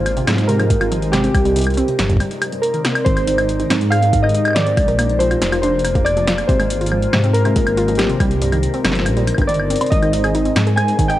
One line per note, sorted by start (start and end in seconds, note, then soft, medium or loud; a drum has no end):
0.00 0.21 G#1 medium
0.00 1.35 G#3 medium
0.00 0.17 A#3 medium
0.00 2.03 F4 medium
0.00 2.03 G4 medium
0.00 0.51 C5 medium
0.00 2.03 C5 medium
0.06 closed hi-hat medium
0.06 high woodblock medium
0.17 0.27 C3 loud
0.17 closed hi-hat soft
0.27 0.74 G#2 medium
0.27 0.38 C4 medium
0.27 snare loud
0.27 closed hi-hat medium
0.27 high woodblock medium
0.30 snare medium
0.33 snare medium
0.36 snare medium
0.38 5.46 A#4 medium
0.38 1.35 D#5 medium
0.38 snare soft
0.38 closed hi-hat soft
0.41 snare soft
0.43 snare soft
0.46 0.57 C3 loud
0.46 1.14 A#4 medium
0.46 snare soft
0.46 closed hi-hat medium
0.59 0.68 F3 medium
0.59 closed hi-hat soft
0.59 high woodblock medium
0.70 kick medium
0.70 closed hi-hat medium
0.81 1.28 G#1 medium
0.81 0.86 F4 medium
0.81 closed hi-hat soft
0.81 high woodblock medium
0.92 0.97 F3 medium
0.92 closed hi-hat medium
1.02 closed hi-hat soft
1.12 1.23 C3 loud
1.12 1.94 G4 medium
1.12 snare loud
1.12 closed hi-hat medium
1.12 high woodblock soft
1.24 1.34 C4 medium
1.24 closed hi-hat soft
1.35 1.81 C2 medium
1.35 3.06 C3 medium
1.35 kick loud
1.35 closed hi-hat medium
1.35 high woodblock medium
1.45 1.54 G2 loud
1.45 closed hi-hat soft
1.56 1.64 C3 medium
1.56 closed hi-hat medium
1.59 closed hi-hat medium
1.61 closed hi-hat medium
1.64 closed hi-hat soft
1.64 high woodblock medium
1.70 3.75 C4 medium
1.70 closed hi-hat soft
1.74 1.82 C4 medium
1.74 closed hi-hat soft
1.77 closed hi-hat medium
1.88 1.93 C3 medium
1.88 4.78 D#4 loud
1.88 3.74 D5 medium
1.88 closed hi-hat soft
1.99 2.20 G1 medium
1.99 snare loud
1.99 closed hi-hat medium
2.09 2.20 G2 loud
2.09 kick soft
2.09 closed hi-hat soft
2.13 kick soft
2.17 2.30 G3 medium
2.17 kick medium
2.17 closed hi-hat medium
2.17 high woodblock medium
2.31 closed hi-hat soft
2.42 2.50 G3 medium
2.42 closed hi-hat medium
2.42 high woodblock medium
2.52 2.58 G2 medium
2.52 closed hi-hat soft
2.62 3.07 A#4 medium
2.62 closed hi-hat medium
2.74 2.79 D#3 medium
2.74 closed hi-hat soft
2.85 2.95 C3 medium
2.85 snare loud
2.85 closed hi-hat medium
2.85 high woodblock medium
2.95 closed hi-hat soft
2.95 high woodblock medium
3.05 3.64 G#1 medium
3.05 3.11 G#3 medium
3.05 4.77 G#3 medium
3.05 3.66 C5 loud
3.05 kick loud
3.05 closed hi-hat medium
3.17 closed hi-hat soft
3.17 high woodblock medium
3.27 3.38 D#3 loud
3.27 closed hi-hat medium
3.38 3.48 D#4 medium
3.38 closed hi-hat soft
3.38 high woodblock medium
3.49 closed hi-hat medium
3.57 3.68 D#3 loud
3.57 8.89 C5 medium
3.57 closed hi-hat soft
3.70 4.79 G#2 medium
3.70 3.79 C4 medium
3.70 snare loud
3.70 closed hi-hat medium
3.70 high woodblock medium
3.81 4.77 G4 medium
3.81 closed hi-hat soft
3.90 3.97 G#4 medium
3.90 4.21 F5 loud
3.90 closed hi-hat medium
3.90 high woodblock medium
4.02 4.07 G#3 medium
4.02 closed hi-hat soft
4.13 kick medium
4.13 closed hi-hat medium
4.23 4.34 D#3 loud
4.23 4.56 D#5 loud
4.23 high woodblock medium
4.29 closed hi-hat soft
4.34 4.45 D#4 medium
4.34 closed hi-hat medium
4.45 closed hi-hat soft
4.45 high woodblock medium
4.48 high woodblock medium
4.53 4.64 D#3 loud
4.53 5.22 D5 loud
4.53 snare loud
4.53 closed hi-hat medium
4.53 high woodblock soft
4.67 4.75 C4 medium
4.67 closed hi-hat soft
4.77 5.35 A#1 medium
4.77 7.17 A#3 medium
4.77 kick loud
4.77 closed hi-hat medium
4.77 high woodblock soft
4.88 4.93 A#4 medium
4.88 closed hi-hat soft
4.99 5.04 A#3 medium
4.99 closed hi-hat medium
4.99 high woodblock medium
5.10 closed hi-hat soft
5.17 5.30 F3 loud
5.17 8.89 F4 medium
5.17 5.59 C5 loud
5.17 closed hi-hat medium
5.31 5.41 F4 medium
5.31 closed hi-hat soft
5.31 high woodblock soft
5.36 6.49 G#4 medium
5.42 6.42 F1 medium
5.42 snare loud
5.42 closed hi-hat medium
5.46 6.49 D5 medium
5.52 5.61 F3 loud
5.52 closed hi-hat soft
5.52 high woodblock medium
5.62 5.72 D4 medium
5.62 6.07 C5 medium
5.62 closed hi-hat medium
5.79 closed hi-hat soft
5.85 5.90 A#4 medium
5.85 closed hi-hat medium
5.85 high woodblock soft
5.95 6.00 A#3 medium
5.95 kick medium
5.95 closed hi-hat soft
6.05 6.49 D5 loud
6.05 closed hi-hat medium
6.05 high woodblock medium
6.17 6.27 F3 loud
6.17 closed hi-hat soft
6.27 6.38 F4 medium
6.27 snare loud
6.27 closed hi-hat medium
6.38 closed hi-hat soft
6.38 high woodblock medium
6.48 7.06 G#1 medium
6.48 6.57 C3 loud
6.48 8.20 G#3 medium
6.48 7.36 C5 loud
6.48 kick loud
6.48 closed hi-hat medium
6.60 6.68 G#3 medium
6.60 closed hi-hat soft
6.60 high woodblock medium
6.70 closed hi-hat medium
6.81 6.86 F4 medium
6.81 closed hi-hat soft
6.86 closed hi-hat medium
6.92 6.97 F3 medium
6.92 high woodblock medium
7.02 8.77 G4 medium
7.02 closed hi-hat soft
7.13 7.60 G#2 medium
7.13 7.23 C3 loud
7.13 11.19 A#4 medium
7.13 snare loud
7.13 high woodblock medium
7.24 7.34 C4 medium
7.24 8.20 D#5 medium
7.24 closed hi-hat soft
7.33 8.00 A#4 medium
7.33 closed hi-hat medium
7.45 7.54 C3 loud
7.45 closed hi-hat soft
7.45 high woodblock soft
7.56 7.64 G#3 medium
7.56 kick medium
7.56 closed hi-hat medium
7.67 8.14 G#1 medium
7.67 closed hi-hat soft
7.67 high woodblock medium
7.77 7.83 F4 medium
7.77 closed hi-hat medium
7.88 7.93 F3 medium
7.88 closed hi-hat soft
7.95 8.80 G4 medium
7.95 snare loud
7.95 closed hi-hat soft
7.99 snare medium
7.99 closed hi-hat medium
7.99 high woodblock soft
8.02 snare medium
8.02 closed hi-hat soft
8.07 8.20 C3 loud
8.07 snare medium
8.07 closed hi-hat soft
8.20 8.67 C2 medium
8.20 9.92 C3 medium
8.20 8.30 G3 medium
8.20 kick loud
8.20 closed hi-hat medium
8.20 high woodblock medium
8.31 10.60 C4 medium
8.31 11.19 D#4 medium
8.31 closed hi-hat soft
8.42 8.50 G2 loud
8.42 closed hi-hat medium
8.52 8.61 D#3 medium
8.52 closed hi-hat soft
8.52 high woodblock soft
8.63 closed hi-hat medium
8.74 8.79 C4 medium
8.74 closed hi-hat soft
8.85 9.07 G1 medium
8.85 8.90 C3 medium
8.85 snare loud
8.85 closed hi-hat medium
8.85 high woodblock medium
8.92 snare medium
8.92 closed hi-hat soft
8.97 10.60 C5 medium
8.97 snare medium
9.06 9.31 A#1 medium
9.06 9.16 G2 loud
9.06 closed hi-hat medium
9.06 high woodblock soft
9.17 9.27 G3 medium
9.17 closed hi-hat soft
9.27 closed hi-hat medium
9.27 high woodblock soft
9.34 9.74 G1 medium
9.34 9.47 G2 loud
9.34 kick medium
9.34 closed hi-hat soft
9.34 high woodblock soft
9.42 high woodblock medium
9.47 9.57 D#3 medium
9.47 9.92 D5 loud
9.47 closed hi-hat medium
9.54 closed hi-hat soft
9.60 high woodblock soft
9.70 9.75 C4 medium
9.70 closed hi-hat medium
9.76 closed hi-hat medium
9.81 9.86 C3 medium
9.81 closed hi-hat medium
9.81 high woodblock medium
9.86 closed hi-hat soft
9.90 10.49 G#1 loud
9.90 11.19 G#3 medium
9.90 10.51 D#5 loud
9.90 kick loud
9.90 closed hi-hat medium
10.02 10.13 D#3 loud
10.02 closed hi-hat soft
10.02 high woodblock medium
10.13 10.23 D#4 medium
10.13 closed hi-hat medium
10.24 10.32 G#4 medium
10.24 closed hi-hat soft
10.24 high woodblock medium
10.35 10.43 D#3 loud
10.35 closed hi-hat medium
10.45 10.54 C4 medium
10.45 closed hi-hat soft
10.56 11.19 G#2 medium
10.56 snare loud
10.56 closed hi-hat medium
10.56 high woodblock soft
10.63 11.19 G3 medium
10.63 10.72 G#4 medium
10.63 closed hi-hat soft
10.69 11.19 C5 medium
10.76 10.83 G#3 medium
10.76 11.10 G#5 loud
10.76 closed hi-hat medium
10.76 high woodblock medium
10.88 closed hi-hat soft
10.99 11.09 D#3 loud
10.99 kick medium
10.99 closed hi-hat medium
11.08 11.19 D#4 medium
11.08 11.19 G5 loud
11.08 closed hi-hat soft
11.08 high woodblock medium